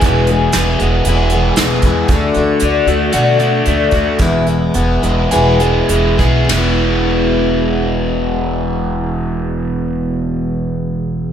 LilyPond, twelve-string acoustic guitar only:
\new Staff \with { instrumentName = "Twelve-string acoustic guitar" } { \time 4/4 \key e \mixolydian \tempo 4 = 105 <e, b, e gis b gis'>8 <e gis b gis'>8 <e gis b gis'>8 <e gis b gis'>8 <e, b, e gis b gis'>8 <e gis b gis'>8 <e gis b gis'>8 <e gis b gis'>8 | <d a d' fis'>8 <a d' fis'>8 <d a d' fis'>8 <a d' fis'>8 <d a d' fis'>8 <a d' fis'>8 <d a d' fis'>8 <a d' fis'>8 | <e, b, e gis b e'>8 <e gis b e'>8 <e gis b e'>8 <e gis b e'>8 <e, b, e gis b e'>8 <e gis b e'>8 <e gis b e'>8 <e gis b e'>8 | <e, b, e gis b e'>1~ |
<e, b, e gis b e'>1 | }